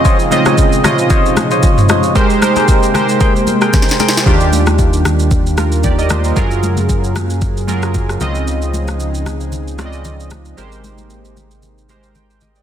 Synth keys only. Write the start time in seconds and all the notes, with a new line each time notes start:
Already playing: C#3 C4 F4 D#5
0.31 C#3 C4 F4 D#5
0.84 C3 C#3 F4 D#5
2.15 G#3 G4 A#4 C5
2.41 G#3 G4 A#4 C5
2.94 G#3 G4 A#4 C5
4.26 D#3 D4 F4 G4
5.58 F4 A#4
5.84 G4 D5
5.98 A#4 D#5
6.10 G4 C5
6.25 F4 A#4
6.36 F#3 F4 G#4 A#4
7.67 F#3 F4 G#4 A#4
8.20 C#3 C4 F4 D#5
9.78 C#3 C4 F4 D5
9.86 D#5
10.57 G#3 G4 A#4 C5
11.89 G#3 G4 A#4 C5 A#5
12.16 G5
12.30 G4 C5
12.42 A#4 D#5
12.56 D5 G5